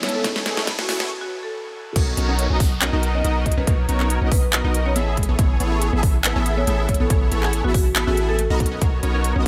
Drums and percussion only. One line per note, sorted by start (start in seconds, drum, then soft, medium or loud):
0.03 snare medium
0.03 closed hi-hat soft
0.09 closed hi-hat medium
0.24 kick loud
0.24 snare medium
0.24 closed hi-hat medium
0.36 snare medium
0.46 snare medium
0.46 closed hi-hat medium
0.57 snare medium
0.67 kick loud
0.67 snare loud
0.67 closed hi-hat medium
0.79 snare medium
0.89 snare loud
0.89 open hi-hat medium
1.00 snare medium
1.96 kick loud
1.96 closed hi-hat medium
1.96 crash loud
2.17 closed hi-hat medium
2.39 closed hi-hat medium
2.60 kick loud
2.60 open hi-hat loud
2.82 clap loud
2.82 closed hi-hat medium
3.03 closed hi-hat medium
3.25 closed hi-hat medium
3.46 kick medium
3.46 closed hi-hat medium
3.52 closed hi-hat medium
3.67 kick loud
3.67 closed hi-hat medium
3.89 closed hi-hat medium
4.00 clap soft
4.10 closed hi-hat medium
4.32 kick loud
4.32 open hi-hat medium
4.53 clap loud
4.53 closed hi-hat medium
4.74 closed hi-hat medium
4.96 closed hi-hat medium
5.17 kick medium
5.17 closed hi-hat medium
5.23 closed hi-hat medium
5.39 kick loud
5.39 closed hi-hat medium
5.60 closed hi-hat medium
5.82 closed hi-hat medium
6.03 kick loud
6.03 open hi-hat medium
6.24 clap loud
6.24 closed hi-hat medium
6.46 closed hi-hat medium
6.67 closed hi-hat medium
6.89 kick medium
6.89 closed hi-hat medium
6.94 closed hi-hat medium
7.10 kick loud
7.10 closed hi-hat medium
7.32 closed hi-hat medium
7.43 clap soft
7.53 closed hi-hat medium
7.74 kick loud
7.74 open hi-hat medium
7.96 clap loud
7.96 closed hi-hat medium
8.17 closed hi-hat medium
8.39 closed hi-hat medium
8.60 kick medium
8.60 closed hi-hat soft
8.66 closed hi-hat medium
8.82 kick loud
8.82 closed hi-hat medium
9.03 closed hi-hat medium
9.24 closed hi-hat medium